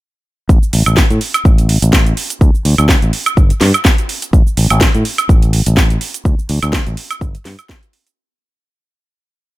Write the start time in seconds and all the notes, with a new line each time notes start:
0.49 A1, kick, cabasa
0.63 muted fingered electric bass stroke, cabasa
0.73 A1, open hi-hat
0.86 A1, closed hi-hat, cabasa, high woodblock
0.97 kick, snare, cabasa
1.10 A2, closed hi-hat, cabasa
1.21 open hi-hat
1.34 closed hi-hat, cabasa, high woodblock
1.45 A1, kick, cabasa
1.58 closed hi-hat, cabasa
1.69 open hi-hat
1.82 A1, closed hi-hat, cabasa
1.93 kick, snare, cabasa
2.07 closed hi-hat, cabasa
2.17 open hi-hat
2.30 closed hi-hat, cabasa
2.41 D2, kick, cabasa
2.54 muted fingered electric bass stroke, cabasa
2.65 D2, open hi-hat
2.78 D2, closed hi-hat, cabasa, high woodblock
2.89 kick, snare, cabasa
3.02 A1, closed hi-hat, cabasa
3.13 open hi-hat
3.26 closed hi-hat, cabasa, high woodblock
3.37 G1, kick, cabasa
3.50 muted fingered electric bass stroke, closed hi-hat, cabasa
3.61 G2, snare, open hi-hat
3.74 closed hi-hat, cabasa, high woodblock
3.85 kick, snare, cabasa
3.98 closed hi-hat, cabasa
4.09 open hi-hat
4.22 closed hi-hat, cabasa
4.33 A1, kick, cabasa
4.47 muted fingered electric bass stroke, cabasa
4.57 A1, open hi-hat
4.70 A1, closed hi-hat, cabasa, high woodblock
4.81 kick, snare, cabasa
4.95 A2, closed hi-hat, cabasa
5.05 open hi-hat
5.18 closed hi-hat, cabasa, high woodblock
5.29 A1, kick, cabasa
5.42 closed hi-hat, cabasa
5.53 open hi-hat
5.66 A1, closed hi-hat, cabasa
5.77 kick, snare, cabasa
5.90 closed hi-hat, cabasa
6.01 open hi-hat
6.14 closed hi-hat, cabasa
6.25 D2, kick, cabasa
6.39 muted fingered electric bass stroke, cabasa
6.49 D2, open hi-hat
6.63 D2, closed hi-hat, cabasa, high woodblock
6.73 kick, snare, cabasa
6.87 A1, closed hi-hat, cabasa
6.97 open hi-hat
7.11 closed hi-hat, cabasa, high woodblock
7.21 G1, kick, cabasa
7.35 muted fingered electric bass stroke, closed hi-hat, cabasa
7.45 G2, snare, open hi-hat
7.59 closed hi-hat, cabasa, high woodblock
7.69 kick, snare, cabasa
7.83 closed hi-hat, cabasa
7.93 open hi-hat
8.07 closed hi-hat, cabasa